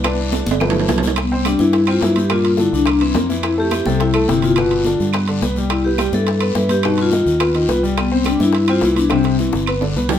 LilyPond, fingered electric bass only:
\new Staff \with { instrumentName = "Fingered electric bass" } { \clef bass \time 4/4 \key c \major \tempo 4 = 212 c,4. g,,4. c,4~ | c,4. g,4. g,4~ | g,4. c,4. f,4~ | f,4. c,4. g,,4~ |
g,,4. g,4. c,4~ | c,4. g,4. g,4~ | g,4. dis,4. c,4~ | c,4. g,4. c,4~ |
c,4. g,,4. c,4 | }